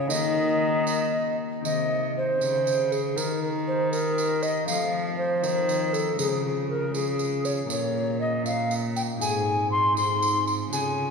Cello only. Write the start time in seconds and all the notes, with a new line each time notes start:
Already playing: C#3
0.10 D#3
1.64 C3
2.40 C#3
3.16 D#3
4.68 F3
5.43 D#3
6.19 C#3
7.70 A#2
9.21 G#2
10.72 C#3